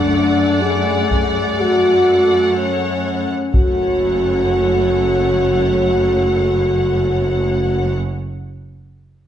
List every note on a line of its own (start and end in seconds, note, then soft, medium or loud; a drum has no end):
0.00 0.25 F#1 soft
0.00 3.29 F#2 soft
0.00 1.57 A3 soft
0.00 0.62 D4 medium
0.00 2.51 D5 soft
0.00 1.54 F#5 soft
0.62 1.58 G#4 medium
1.11 taiko soft
1.58 3.30 A3 soft
1.58 2.56 F#4 medium
1.58 3.30 F#5 soft
2.56 3.52 C#4 medium
2.56 3.33 C#5 soft
3.53 7.94 F#1 soft
3.53 7.93 F#2 soft
3.53 7.93 A3 soft
3.53 7.93 F#4 soft
3.53 7.94 C#5 soft
3.53 7.94 F#5 soft
3.53 taiko soft